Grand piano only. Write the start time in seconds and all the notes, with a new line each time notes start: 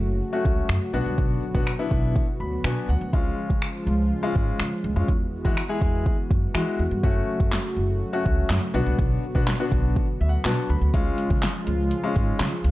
0.33 A3 C#4 F#4
0.93 B3 D4 F#4
1.54 B3 D4 F#4
1.79 B3 D4 E4
2.40 B5
2.64 B3 D4 F#4 G#5
2.89 F#5
3.13 G#3 C#4 F4
4.23 G#3 C#4 F4
4.96 G#3 C#4 F4
5.45 G#3 E4 F#4
5.69 G#3 E4 G#4
6.54 G#3 E4 F#4
7.03 A3 C#4 F#4
8.13 A3 C#4 F#4
8.74 B3 D4 F#4
9.35 B3 D4 F#4
9.60 B3 D4 F#4
10.21 E5
10.29 F#5
10.45 B3 D4 F#4 A5
10.70 B5
10.94 G#3 C#4 F4
12.04 G#3 C#4 F4